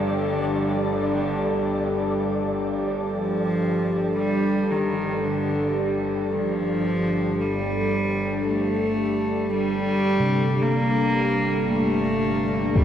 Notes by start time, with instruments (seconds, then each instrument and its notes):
Already playing: synth drone G1 G2, cello D3, analog synth pad G3 D4 G4 A4, kettle gongs G4, synth texture D5
0.98 cello D3
3.11 cello F3
4.17 cello G3
4.71 cello D#3
5.24 cello D3
6.32 synth drone G1 G2, cello F3
7.41 cello G3
8.47 cello A3
9.54 cello G3
10.20 kettle gongs C3
10.62 cello A#3
11.68 cello A3
12.76 cello G3, impact